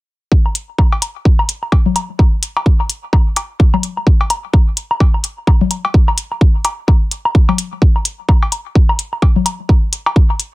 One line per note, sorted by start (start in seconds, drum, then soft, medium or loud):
0.32 kick loud
0.46 low woodblock soft
0.55 closed hi-hat medium
0.78 kick loud
0.78 low woodblock medium
0.92 cowbell medium
1.02 closed hi-hat medium
1.02 low woodblock soft
1.25 kick loud
1.39 low woodblock medium
1.49 closed hi-hat medium
1.63 low woodblock soft
1.72 kick loud
1.72 cowbell medium
1.86 low conga medium
1.96 closed hi-hat medium
1.96 low woodblock medium
2.19 kick loud
2.19 low woodblock soft
2.43 closed hi-hat medium
2.57 cowbell medium
2.57 low woodblock medium
2.66 kick loud
2.80 low woodblock soft
2.90 closed hi-hat medium
3.13 kick loud
3.13 low woodblock medium
3.36 closed hi-hat medium
3.36 cowbell medium
3.36 low woodblock soft
3.60 kick loud
3.74 low conga medium
3.74 low woodblock medium
3.83 closed hi-hat medium
3.97 low woodblock soft
4.07 kick loud
4.21 cowbell medium
4.30 closed hi-hat medium
4.30 low woodblock medium
4.54 kick loud
4.54 low woodblock soft
4.77 closed hi-hat medium
4.91 low woodblock medium
5.00 kick loud
5.00 cowbell medium
5.14 low woodblock soft
5.24 closed hi-hat medium
5.47 kick loud
5.47 low woodblock medium
5.61 low conga medium
5.71 closed hi-hat medium
5.71 low woodblock soft
5.85 cowbell medium
5.94 kick loud
6.08 low woodblock medium
6.18 closed hi-hat medium
6.32 low woodblock soft
6.41 kick loud
6.65 closed hi-hat medium
6.65 cowbell medium
6.65 low woodblock medium
6.88 kick loud
6.88 low woodblock soft
7.11 closed hi-hat medium
7.25 low woodblock medium
7.35 kick loud
7.49 cowbell medium
7.49 low conga medium
7.49 low woodblock soft
7.58 closed hi-hat medium
7.82 kick loud
7.96 low woodblock soft
8.05 closed hi-hat medium
8.29 kick loud
8.29 low woodblock medium
8.43 cowbell medium
8.52 closed hi-hat medium
8.52 low woodblock soft
8.75 kick loud
8.89 low woodblock medium
8.99 closed hi-hat medium
9.13 low woodblock soft
9.22 kick loud
9.22 cowbell medium
9.36 low conga medium
9.46 closed hi-hat medium
9.46 low woodblock medium
9.69 kick loud
9.69 low woodblock soft
9.93 closed hi-hat medium
10.06 cowbell medium
10.06 low woodblock medium
10.16 kick loud
10.30 low woodblock soft
10.40 closed hi-hat medium